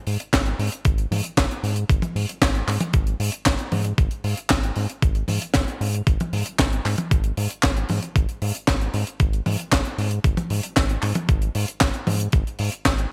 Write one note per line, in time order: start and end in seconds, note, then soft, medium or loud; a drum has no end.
0.07 0.18 G#2 medium
0.07 open hi-hat loud
0.20 closed hi-hat medium
0.33 0.54 G#1 loud
0.33 kick loud
0.33 snare loud
0.33 clap loud
0.33 closed hi-hat medium
0.46 closed hi-hat soft
0.59 0.70 G#2 loud
0.59 open hi-hat loud
0.72 closed hi-hat medium
0.85 1.06 G#1 loud
0.85 kick loud
0.85 closed hi-hat medium
0.98 closed hi-hat soft
1.11 1.22 G#2 medium
1.11 open hi-hat loud
1.11 high tom medium
1.24 closed hi-hat medium
1.37 1.48 G#1 medium
1.37 kick loud
1.37 snare loud
1.37 clap medium
1.37 closed hi-hat medium
1.51 closed hi-hat soft
1.63 1.85 G#2 medium
1.63 open hi-hat medium
1.76 closed hi-hat medium
1.89 2.00 G#1 loud
1.89 kick loud
1.89 closed hi-hat medium
2.02 closed hi-hat soft
2.02 high tom medium
2.16 2.26 G#2 medium
2.16 open hi-hat loud
2.29 closed hi-hat medium
2.42 2.63 G#1 loud
2.42 kick loud
2.42 snare loud
2.42 clap loud
2.42 closed hi-hat medium
2.55 closed hi-hat soft
2.68 2.78 G#2 loud
2.68 clap medium
2.68 open hi-hat medium
2.80 closed hi-hat medium
2.80 high tom medium
2.93 3.15 G#1 loud
2.93 kick loud
2.93 closed hi-hat medium
3.07 closed hi-hat soft
3.20 3.31 G#2 medium
3.20 open hi-hat loud
3.32 closed hi-hat medium
3.46 3.57 G#1 medium
3.46 kick loud
3.46 snare loud
3.46 clap loud
3.46 closed hi-hat medium
3.59 closed hi-hat soft
3.72 3.93 G#2 medium
3.72 open hi-hat loud
3.72 high tom medium
3.85 closed hi-hat medium
3.98 4.09 G#1 loud
3.98 kick loud
3.98 closed hi-hat medium
4.11 closed hi-hat medium
4.24 4.35 G#2 medium
4.24 open hi-hat loud
4.37 closed hi-hat medium
4.50 4.72 G#1 loud
4.50 kick loud
4.50 snare loud
4.50 clap medium
4.50 closed hi-hat medium
4.63 closed hi-hat soft
4.76 4.87 G#2 loud
4.76 open hi-hat medium
4.90 closed hi-hat medium
5.02 5.24 G#1 loud
5.02 kick loud
5.02 closed hi-hat medium
5.15 closed hi-hat soft
5.28 5.39 G#2 medium
5.28 open hi-hat loud
5.28 high tom medium
5.42 closed hi-hat medium
5.54 5.65 G#1 medium
5.54 kick loud
5.54 snare loud
5.54 clap medium
5.54 closed hi-hat medium
5.68 closed hi-hat soft
5.81 6.02 G#2 medium
5.81 open hi-hat loud
5.94 closed hi-hat medium
6.07 6.18 G#1 loud
6.07 kick loud
6.07 closed hi-hat medium
6.20 closed hi-hat soft
6.20 high tom medium
6.33 6.44 G#2 medium
6.33 open hi-hat loud
6.46 closed hi-hat medium
6.59 6.80 G#1 loud
6.59 kick loud
6.59 snare loud
6.59 clap medium
6.59 closed hi-hat medium
6.73 closed hi-hat soft
6.85 6.96 G#2 loud
6.85 clap soft
6.85 open hi-hat loud
6.98 closed hi-hat medium
6.98 high tom medium
7.11 7.33 G#1 loud
7.11 kick loud
7.11 closed hi-hat medium
7.24 closed hi-hat soft
7.37 7.48 G#2 medium
7.37 open hi-hat loud
7.50 closed hi-hat medium
7.63 7.85 G#1 loud
7.63 kick loud
7.63 snare loud
7.63 clap medium
7.63 closed hi-hat medium
7.77 closed hi-hat soft
7.89 8.00 G#2 medium
7.89 open hi-hat loud
7.89 high tom medium
8.03 closed hi-hat medium
8.16 8.26 G#1 loud
8.16 kick loud
8.16 closed hi-hat medium
8.29 closed hi-hat soft
8.42 8.52 G#2 medium
8.42 open hi-hat loud
8.55 closed hi-hat medium
8.68 8.89 G#1 loud
8.68 kick loud
8.68 snare loud
8.68 clap medium
8.68 closed hi-hat medium
8.81 closed hi-hat soft
8.94 9.05 G#2 loud
8.94 open hi-hat loud
9.07 closed hi-hat medium
9.20 9.41 G#1 loud
9.20 kick loud
9.20 closed hi-hat medium
9.33 closed hi-hat soft
9.46 9.57 G#2 medium
9.46 open hi-hat loud
9.46 high tom medium
9.59 closed hi-hat medium
9.72 9.83 G#1 medium
9.72 kick loud
9.72 snare loud
9.72 clap loud
9.72 closed hi-hat medium
9.85 closed hi-hat soft
9.98 10.19 G#2 medium
9.98 open hi-hat loud
10.11 closed hi-hat medium
10.24 10.35 G#1 loud
10.24 kick loud
10.24 closed hi-hat medium
10.37 closed hi-hat soft
10.37 high tom medium
10.50 10.61 G#2 medium
10.50 open hi-hat loud
10.63 closed hi-hat medium
10.76 10.98 G#1 loud
10.76 kick loud
10.76 snare loud
10.76 clap medium
10.76 closed hi-hat medium
10.89 closed hi-hat soft
11.02 11.13 G#2 loud
11.02 clap soft
11.02 open hi-hat loud
11.15 closed hi-hat medium
11.15 high tom medium
11.29 11.50 G#1 loud
11.29 kick loud
11.29 closed hi-hat medium
11.42 closed hi-hat soft
11.55 11.66 G#2 medium
11.55 open hi-hat loud
11.68 closed hi-hat medium
11.81 11.92 G#1 medium
11.81 kick loud
11.81 snare loud
11.81 clap medium
11.81 closed hi-hat medium
11.94 closed hi-hat medium
12.07 12.28 G#2 medium
12.07 open hi-hat loud
12.07 high tom medium
12.20 closed hi-hat medium
12.32 12.44 G#1 loud
12.32 kick loud
12.32 closed hi-hat medium
12.47 closed hi-hat soft
12.59 12.70 G#2 medium
12.59 open hi-hat loud
12.72 closed hi-hat medium
12.85 13.07 G#1 loud
12.85 kick loud
12.85 snare loud
12.85 clap medium
12.85 closed hi-hat medium
12.98 closed hi-hat medium